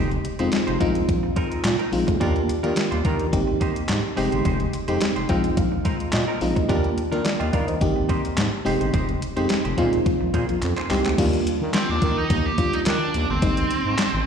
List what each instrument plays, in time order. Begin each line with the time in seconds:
Already playing: fm bass F1, clean electric guitar G#3 D#4 G4 C5, fm electric piano G#3 C4 D#4 G4
0.11 muted clean electric guitar stroke, closed hi-hat
0.24 muted clean electric guitar stroke, closed hi-hat
0.39 fm bass F2, fm electric piano G#3 C4 D#4 F4, clean electric guitar G#3 D#4 G4 C5, closed hi-hat
0.52 snare, clap, closed hi-hat
0.67 fm bass F1, clean electric guitar G#3 D#4 G4 C5, closed hi-hat
0.80 fm bass A#1, fm electric piano G#3 C4 D#4 F4, clean electric guitar G#3 C4 D#4 A#4, kick, closed hi-hat
0.95 muted clean electric guitar stroke, closed hi-hat
1.08 fm bass A#1, muted clean electric guitar stroke, kick, closed hi-hat
1.23 muted clean electric guitar stroke
1.36 clean electric guitar G#3 C4 D#4 A#4, kick, closed hi-hat
1.51 clean electric guitar G#3 C4 D#4 A#4, closed hi-hat
1.64 fm bass A#2, snare, clap, closed hi-hat
1.79 clean electric guitar G#3 C4 D#4 A#4, closed hi-hat
1.92 fm bass A#1, fm electric piano G#3 C4 D#4 F4, muted clean electric guitar stroke, open hi-hat
2.07 fm bass D2, muted clean electric guitar stroke, kick, closed hi-hat
2.20 fm bass D#2, clean electric guitar G3 D4 F4 A#4, fm electric piano A#3 D4 F4 G4, kick, closed hi-hat
2.35 muted clean electric guitar stroke, closed hi-hat
2.48 muted clean electric guitar stroke, closed hi-hat
2.63 fm bass D#3, clean electric guitar G3 D4 F4 A#4, fm electric piano A#3 D4 F4 G4, closed hi-hat
2.76 muted clean electric guitar stroke, snare, clap, closed hi-hat
2.91 fm bass D#2, clean electric guitar G3 D4 F4 C5, closed hi-hat
3.04 fm bass D#3, clean electric guitar G3 D4 F4 A#4, kick, closed hi-hat
3.19 muted clean electric guitar stroke, closed hi-hat
3.32 fm bass G#1, fm electric piano A#3 C4 D#4 G4, muted clean electric guitar stroke, kick, closed hi-hat
3.47 muted clean electric guitar stroke
3.61 clean electric guitar A#3 D#4 G4 C5, kick, closed hi-hat
3.76 muted clean electric guitar stroke, closed hi-hat
3.89 fm bass G#2, muted clean electric guitar stroke, snare, clap, closed hi-hat
4.03 muted clean electric guitar stroke
4.17 fm bass F1, clean electric guitar G#3 D#4 G4 C5, fm electric piano G#3 C4 D#4 G4, open hi-hat
4.32 fm bass G1, clean electric guitar G#3 D#4 G4 C5, closed hi-hat
4.45 fm bass F1, clean electric guitar G#3 D#4 G4 C5, kick, closed hi-hat
4.60 muted clean electric guitar stroke, closed hi-hat
4.73 muted clean electric guitar stroke, closed hi-hat
4.88 fm bass F2, fm electric piano G#3 C4 D#4 G4, clean electric guitar G#3 D#4 G4 C5, closed hi-hat
5.01 muted clean electric guitar stroke, snare, clap, closed hi-hat
5.16 fm bass F1, clean electric guitar G#3 D#4 G4 C5, closed hi-hat
5.29 fm bass A#1, clean electric guitar G#3 C4 D#4 A#4, fm electric piano G#3 C4 D#4 F4 G5, kick, closed hi-hat
5.44 muted clean electric guitar stroke, closed hi-hat
5.57 fm bass A#1, fm electric piano F5, muted clean electric guitar stroke, kick, closed hi-hat
5.72 muted clean electric guitar stroke
5.85 clean electric guitar G#3 C4 D#4 A#4, kick, closed hi-hat
6.00 muted clean electric guitar stroke, closed hi-hat
6.13 fm bass A#2, fm electric piano D#5, muted clean electric guitar stroke, snare, clap, closed hi-hat
6.28 clean electric guitar G#3 C4 D#4 A#4
6.41 fm bass A#1, fm electric piano G#3 C4 D#4 F4, muted clean electric guitar stroke, open hi-hat
6.56 fm bass D2, muted clean electric guitar stroke, kick, closed hi-hat
6.69 fm bass D#2, clean electric guitar G3 D4 F4 A#4, fm electric piano A#3 D4 F4 G4, kick, closed hi-hat
6.84 muted clean electric guitar stroke, closed hi-hat
6.97 muted clean electric guitar stroke, closed hi-hat
7.12 fm bass D#3, clean electric guitar G3 D4 F4 A#4, fm electric piano A#3 D4 F4 A#4, closed hi-hat
7.24 fm electric piano A#4 D5, muted clean electric guitar stroke, snare, clap, closed hi-hat
7.39 fm bass D#2, clean electric guitar G3 D4 F4 C5, fm electric piano D#5 G5, closed hi-hat
7.53 fm bass D#3, clean electric guitar G3 D4 F4 A#4, fm electric piano D5 F5, kick, closed hi-hat
7.67 fm electric piano C5 D#5, muted clean electric guitar stroke, closed hi-hat
7.81 fm bass G#1, fm electric piano A#3 C4 D#4 G4, muted clean electric guitar stroke, kick, closed hi-hat
7.96 muted clean electric guitar stroke
8.09 clean electric guitar A#3 D#4 G4 C5, kick, closed hi-hat
8.24 muted clean electric guitar stroke, closed hi-hat
8.37 fm bass G#2, muted clean electric guitar stroke, snare, clap, closed hi-hat
8.53 muted clean electric guitar stroke
8.65 fm bass F1, fm electric piano G#3 C4 D#4 G4, clean electric guitar G#3 D#4 G4 C5, open hi-hat
8.81 fm bass G1, clean electric guitar G#3 D#4 G4 C5, closed hi-hat
8.94 fm bass F1, clean electric guitar G#3 D#4 G4 C5, kick, closed hi-hat
9.09 muted clean electric guitar stroke, closed hi-hat
9.22 muted clean electric guitar stroke, closed hi-hat
9.36 fm bass F2, fm electric piano G#3 C4 D#4 G4, clean electric guitar G#3 D#4 G4 C5, closed hi-hat
9.50 snare, clap, closed hi-hat
9.64 fm bass F1, clean electric guitar G#3 D#4 G4 C5, closed hi-hat
9.77 fm bass A#2, fm electric piano G#3 C4 D#4 F4, clean electric guitar A#3 D#4 G#4 C5, kick, closed hi-hat
9.93 muted clean electric guitar stroke, closed hi-hat
10.06 muted clean electric guitar stroke, kick, closed hi-hat
10.21 fm bass A#1, muted clean electric guitar stroke
10.34 fm bass A#2, clean electric guitar A#3 D#4 G#4 C5, kick, closed hi-hat
10.48 fm bass A#1, muted clean electric guitar stroke, closed hi-hat
10.62 fm bass F2, muted clean electric guitar stroke, clap, closed hi-hat
10.77 clean electric guitar A#3 D#4 G#4 C5, clap, closed hi-hat
10.90 fm bass C2, fm electric piano G#3 C4 D#4 G4, clean electric guitar A#3 D#4 G#4 C5, clap, open hi-hat
11.05 fm bass D2, muted clean electric guitar stroke, clap, closed hi-hat
11.18 fm bass D#2, fm electric piano G3 A#3 D4 F4, kick, closed hi-hat, crash
11.33 closed hi-hat
11.47 closed hi-hat
11.61 fm bass D#3
11.74 lead electric guitar C4, snare, clap, closed hi-hat
11.89 fm bass D#2, lead electric guitar D4
12.02 fm bass D#3, kick, closed hi-hat
12.18 lead electric guitar D#4
12.30 fm bass D#2, kick, closed hi-hat
12.46 lead electric guitar G4
12.58 fm electric piano G3 A#3 D4 F4, kick, closed hi-hat
12.73 lead electric guitar D#4, closed hi-hat
12.86 fm bass D#3, lead electric guitar D4, snare, clap, closed hi-hat
13.14 fm bass D#2, closed hi-hat
13.29 fm bass G1, lead electric guitar C4
13.42 fm bass G#1, fm electric piano G3 A#3 C4 D#4, kick, closed hi-hat
13.57 closed hi-hat
13.71 closed hi-hat
13.85 fm bass G#2
13.98 snare, clap, closed hi-hat
14.13 fm bass G#1